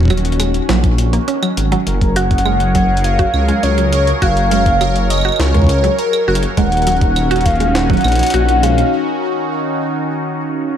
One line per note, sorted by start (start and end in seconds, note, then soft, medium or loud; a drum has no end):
0.00 0.60 D#1 loud
0.00 1.83 D#3 medium
0.00 1.83 C#4 medium
0.00 1.83 F#4 medium
0.00 kick medium
0.03 kick medium
0.05 kick medium
0.08 0.24 F#3 medium
0.08 kick loud
0.08 closed hi-hat medium
0.08 claves soft
0.17 closed hi-hat soft
0.25 closed hi-hat soft
0.32 closed hi-hat soft
0.40 0.53 G#3 medium
0.40 closed hi-hat medium
0.40 claves medium
0.54 closed hi-hat soft
0.69 1.19 A#1 loud
0.69 0.82 F#3 medium
0.69 snare loud
0.69 closed hi-hat medium
0.84 kick loud
0.84 closed hi-hat soft
0.98 closed hi-hat medium
1.13 1.21 A#3 medium
1.13 closed hi-hat soft
1.28 1.41 C#4 medium
1.28 closed hi-hat medium
1.43 1.57 F#3 medium
1.43 closed hi-hat soft
1.43 claves medium
1.57 1.75 G#1 medium
1.57 closed hi-hat medium
1.72 1.85 F#3 loud
1.72 closed hi-hat soft
1.87 3.25 F#1 loud
1.87 6.53 F#3 medium
1.87 6.53 G#4 medium
1.87 8.93 A#4 medium
1.87 6.53 A#4 medium
1.87 2.18 A#4 loud
1.87 6.53 C#5 medium
1.87 closed hi-hat medium
2.01 kick loud
2.01 closed hi-hat soft
2.16 2.24 F#4 loud
2.16 3.06 F#5 loud
2.16 closed hi-hat medium
2.31 kick loud
2.31 closed hi-hat soft
2.38 closed hi-hat medium
2.46 2.59 G#3 medium
2.46 claves soft
2.60 closed hi-hat soft
2.75 2.88 F#3 medium
2.75 kick medium
2.75 closed hi-hat medium
2.97 closed hi-hat soft
3.04 3.65 F5 loud
3.04 closed hi-hat medium
3.19 3.27 F#4 loud
3.19 kick loud
3.19 closed hi-hat soft
3.34 3.52 C#2 loud
3.34 claves soft
3.48 3.62 G#3 medium
3.48 closed hi-hat soft
3.63 4.13 C#2 medium
3.63 4.07 C#5 loud
3.63 closed hi-hat medium
3.78 3.91 F#3 medium
3.78 closed hi-hat soft
3.93 closed hi-hat medium
4.07 closed hi-hat soft
4.22 5.30 F#1 loud
4.22 4.30 F#4 loud
4.22 5.12 F5 loud
4.22 kick loud
4.22 closed hi-hat medium
4.37 closed hi-hat soft
4.51 4.65 G#3 medium
4.51 closed hi-hat medium
4.66 kick loud
4.66 closed hi-hat soft
4.81 4.94 F#3 medium
4.81 closed hi-hat medium
4.81 claves soft
4.96 closed hi-hat soft
5.10 5.41 D#5 loud
5.10 closed hi-hat medium
5.10 claves soft
5.14 claves soft
5.18 claves soft
5.21 5.33 F#4 loud
5.21 claves soft
5.25 claves soft
5.29 claves soft
5.32 claves soft
5.36 5.89 C#2 loud
5.36 6.00 C#5 loud
5.36 snare loud
5.36 closed hi-hat medium
5.36 claves medium
5.54 5.68 G#3 medium
5.54 kick soft
5.54 closed hi-hat soft
5.57 kick medium
5.59 kick medium
5.62 kick medium
5.64 kick medium
5.67 kick medium
5.67 closed hi-hat medium
5.84 5.97 F#3 medium
5.84 closed hi-hat soft
5.98 6.43 A#4 medium
5.98 closed hi-hat medium
6.13 closed hi-hat soft
6.13 claves medium
6.28 6.46 F#1 loud
6.28 6.36 F#4 loud
6.35 closed hi-hat medium
6.43 closed hi-hat soft
6.57 7.95 D#1 loud
6.57 10.77 D#3 medium
6.57 6.71 G#3 medium
6.57 10.77 C#4 medium
6.57 10.77 D#4 medium
6.57 10.77 F#4 medium
6.57 7.47 F#5 loud
6.57 kick loud
6.57 closed hi-hat medium
6.72 closed hi-hat soft
6.77 closed hi-hat soft
6.82 closed hi-hat soft
6.87 7.00 F#3 medium
6.87 closed hi-hat medium
6.92 closed hi-hat soft
6.97 closed hi-hat soft
7.01 kick loud
7.01 closed hi-hat soft
7.16 closed hi-hat medium
7.16 claves medium
7.31 7.39 F#4 loud
7.31 closed hi-hat soft
7.36 closed hi-hat soft
7.41 closed hi-hat soft
7.45 7.76 F5 loud
7.45 kick medium
7.45 closed hi-hat medium
7.55 closed hi-hat soft
7.60 7.74 G#3 medium
7.60 closed hi-hat soft
7.75 8.65 F#5 loud
7.75 snare loud
7.75 closed hi-hat medium
7.90 8.03 F#3 medium
7.90 kick loud
7.90 closed hi-hat soft
7.93 closed hi-hat soft
7.97 closed hi-hat soft
8.01 8.22 A#1 loud
8.01 closed hi-hat soft
8.04 closed hi-hat soft
8.04 claves medium
8.08 closed hi-hat soft
8.12 closed hi-hat soft
8.15 closed hi-hat medium
8.19 closed hi-hat medium
8.23 closed hi-hat medium
8.26 closed hi-hat medium
8.30 8.83 A#1 medium
8.30 closed hi-hat medium
8.34 8.42 F#4 loud
8.34 closed hi-hat medium
8.49 closed hi-hat soft
8.63 8.76 G#3 medium
8.63 8.93 F5 loud
8.63 closed hi-hat medium
8.78 closed hi-hat soft